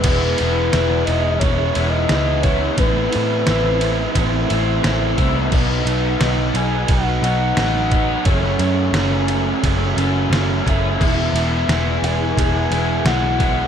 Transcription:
<<
  \new Staff \with { instrumentName = "Soft synth lead" } { \time 4/4 \key e \major \tempo 4 = 88 b'4. dis''8 cis''8. dis''8. cis''8 | b'8 b'2 r4. | r4. gis''8 fis''8 fis''4. | cis''2 r4. e''8~ |
e''4. gis''4. fis''4 | }
  \new Staff \with { instrumentName = "Overdriven electric guitar" } { \time 4/4 \key e \major <e gis b e'>8 <gis b e'>8 <e gis b e'>8 <gis b e'>8 <e gis b e'>8 <gis b e'>8 <e gis b e'>8 <gis b e'>8 | <a, e a c' e'>8 <a c' e'>8 <e a c' e'>8 <a c' e'>8 <a, e a c' e'>8 <a c' e'>8 <e a c' e'>8 <a c' e'>8 | <b, fis b dis'>8 <fis b dis'>8 <b, fis b dis'>8 <fis b dis'>8 <b, fis b dis'>8 <fis b dis'>8 <b, fis b dis'>8 <fis b dis'>8 | <fis, cis fis a cis'>8 <fis a cis'>8 <cis fis a cis'>8 <fis a cis'>8 <fis, cis fis a cis'>8 <fis a cis'>8 <cis fis a cis'>8 <fis a cis'>8 |
<e gis b e'>8 <gis b e'>8 <e gis b e'>8 <gis b e'>8 <e gis b e'>8 <gis b e'>8 <e gis b e'>8 <gis b e'>8 | }
  \new Staff \with { instrumentName = "Overdriven electric guitar" } { \time 4/4 \key e \major <e gis b e'>4 <e gis b e'>4. <gis b e'>8 <e gis b e'>8 <gis b e'>8 | <a, e a c' e'>4 <e a c' e'>4. <a c' e'>8 <e a c' e'>8 <a c' e'>8 | <b, fis b dis'>4 <b, fis b dis'>4. <fis b dis'>8 <b, fis b dis'>8 <fis b dis'>8 | <fis, cis fis a cis'>4 <cis fis a cis'>4. <fis a cis'>8 <cis fis a cis'>8 <fis a cis'>8 |
<e gis b e'>4 <e gis b e'>4. <gis b e'>8 <e gis b e'>8 <gis b e'>8 | }
  \new Staff \with { instrumentName = "Picked electric bass" } { \clef bass \time 4/4 \key e \major e,,8 e,,8 e,,8 e,,8 e,,8 e,,8 cis,4 | a,,8 a,8 a,,4 a,,8 a,,8 a,,8 c,8 | b,,8 b,,8 b,,8 b,,8 b,,8 b,,8 a,,4 | fis,,8 fis,8 fis,,4 fis,,8 fis,,8 fis,,8 fis,,8 |
e,,8 e,,8 e,,8 e,,8 e,,8 e,,8 b,,4 | }
  \new DrumStaff \with { instrumentName = "Drums" } \drummode { \time 4/4 <cymc bd cymr>8 cymr8 <cymr sn>8 cymr8 <bd cymr>8 cymr8 <cymr sn>8 <bd cymr>8 | <bd cymr>8 cymr8 <cymr sn>8 cymr8 <bd cymr>8 cymr8 <cymr sn>8 <bd cymr>8 | <cymc bd>8 cymr8 <cymr sn>8 cymr8 <bd cymr>8 cymr8 <cymr sn>8 <bd cymr>8 | <bd cymr>16 sn16 cymr8 <cymr sn>8 cymr8 <bd cymr>8 cymr8 <cymr sn>8 <bd cymr>8 |
<cymc bd>8 cymr8 <cymr sn>8 cymr8 <bd cymr>8 cymr8 <cymr sn>8 <bd cymr>8 | }
>>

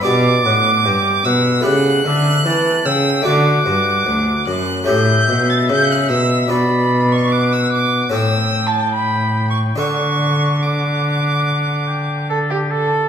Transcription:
<<
  \new Staff \with { instrumentName = "Violin" } { \time 4/4 \key d \major \tempo 4 = 74 d'''4. e'''8 fis'''4. e'''8 | d'''4. fis'''8 g'''8. a'''16 g'''16 fis'''16 e'''8 | b''8. cis'''16 d'''16 e'''16 d'''8 \tuplet 3/2 { e'''4 a''8 b''4 cis'''8 } | cis'''4 d'''2 a'16 g'16 a'8 | }
  \new Staff \with { instrumentName = "Oboe" } { \time 4/4 \key d \major d''8 fis''8 g''8 fis''8 fis''8 e''8 a''8 g''8 | fis''4. r8 e''2 | d''4 fis''4 g''2 | fis''4 fis''4. g''8 a'16 g'16 a'8 | }
  \new Staff \with { instrumentName = "Harpsichord" } { \time 4/4 \key d \major <b d' g'>2 <a e' g'>2 | <a d' fis'>2 <a cis' g'>2 | <d' fis'>2 <cis' a'>2 | <d' a'>1 | }
  \new Staff \with { instrumentName = "Harpsichord" } { \clef bass \time 4/4 \key d \major b,8 a,8 g,8 b,8 cis8 d8 e8 cis8 | d8 g,8 d,8 fis,8 a,8 b,8 cis8 b,8 | b,2 a,2 | d2.~ d8. r16 | }
  \new Staff \with { instrumentName = "Cello" } { \clef bass \time 4/4 \key d \major b,8 a,8 g,8 b,8 cis8 d8 e8 cis8 | d8 g,8 d,8 fis,8 a,8 b,8 cis8 b,8 | b,2 a,2 | d2.~ d8. r16 | }
>>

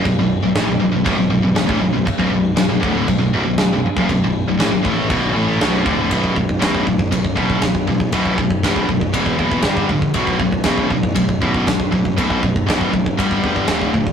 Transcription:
<<
  \new Staff \with { instrumentName = "Distorted electric guitar" } { \clef bass \time 4/4 \key b \minor \tempo 4 = 119 <b,, fis,>16 <b,, fis,>8 <b,, fis,>16 <a, e>16 <b,, fis,>16 <b,, fis,>16 <b,, fis,>16 <b,, fis,>16 <b,, fis,>16 <b,, fis,>16 <b,, fis,>16 <b,, fis,>16 <a, e>16 <b,, fis,>16 <b,, fis,>16 | r16 <b,, fis,>16 <b,, fis,>8 <b,, fis,>16 <b,, fis,>16 <d, a, d>8 <b,, fis,>16 <b,, fis,>16 <b,, fis,>16 <b,, fis,>16 <b,, fis,>16 <b,, fis,>16 r16 <fis, cis>16 | <b,, fis,>16 <b,, fis,>8 <b,, fis,>16 <a, e>16 <b,, fis,>16 <a, e a>8 <b,, fis, b,>8 <a, e a>8 <b,, fis, b,>8 <d, a, d>8 | <b,, fis, b,>8 <b,, fis,>8 <b,, fis, b,>8 <b,, fis,>8 <b,, fis,>8 <b,, fis, b,>8 <b,, fis,>8 <b,, fis,>8 |
<b,, fis, b,>8 <b,, fis,>8 <b,, fis, b,>8 <b,, fis,>8 <e, b, e>8 <e, b, e>8 <g, d g>8 <g, d>8 | <b,, fis, b,>8 <b,, fis,>8 <b,, fis, b,>8 <b,, fis,>8 <b,, fis,>8 <b,, fis, b,>8 <b,, fis,>8 <b,, fis,>8 | <b,, fis, b,>8 <b,, fis,>8 <b,, fis, b,>8 <b,, fis,>8 <g, d g>8 <g, d g>8 <d, a, d>8 <d, a,>8 | }
  \new Staff \with { instrumentName = "Picked electric bass" } { \clef bass \time 4/4 \key b \minor b,,,16 b,,,8 b,,,16 a,,16 b,,,16 b,,,16 b,,,16 b,,,16 b,,,16 b,,,16 b,,,16 b,,,16 a,,16 b,,,16 b,,,16 | r16 b,,,16 b,,,8 b,,,16 b,,,16 d,,8 b,,,16 b,,,16 b,,,16 b,,,16 b,,,16 b,,,16 r16 fis,,16 | b,,,16 b,,,8 b,,,16 a,,16 b,,,16 a,,8 b,,,8 a,,8 b,,,8 d,,8 | b,,,8 b,,,8 b,,,8 a,,8 b,,,8 fis,,8 b,,8 a,,8 |
b,,,4 b,,,8 b,,,8 e,,8 fis,,8 g,,8 ais,,8 | b,,,8 b,,,8 b,,,8 a,,8 b,,,8 fis,,8 b,,8 a,,8 | b,,,4 b,,,8 b,,,8 g,,8 e,8 d,,8 ais,,8 | }
  \new DrumStaff \with { instrumentName = "Drums" } \drummode { \time 4/4 <cymc bd>4 <cymc sn>4 <cymc bd>4 <cymc sn>16 bd8. | <cymc bd>16 bd8. <cymc sn>8 bd8 <cymc bd>4 <cymc sn>8. bd16 | <cymc bd>4 <cymc sn>8 bd8 <cymc bd>4 <cymc sn>8 bd8 | <bd rb>16 bd16 bd16 bd16 <bd rb sn>16 bd16 bd16 bd16 <bd rb>16 bd16 bd16 bd16 <bd rb sn>16 bd16 bd16 bd16 |
<bd rb>16 bd16 bd16 bd16 <bd rb sn>16 bd16 bd16 bd16 <bd rb>16 bd16 bd16 bd16 <bd rb sn>16 bd16 bd16 bd16 | <bd rb>16 bd16 bd16 bd16 <bd rb sn>16 bd16 bd16 bd16 <bd rb>16 bd16 bd16 bd16 <bd rb sn>16 bd16 bd16 bd16 | <bd rb>16 bd16 bd16 bd16 <bd rb sn>16 bd16 bd16 bd16 <bd rb>16 bd16 bd16 bd16 <bd rb sn>16 bd16 bd16 bd16 | }
>>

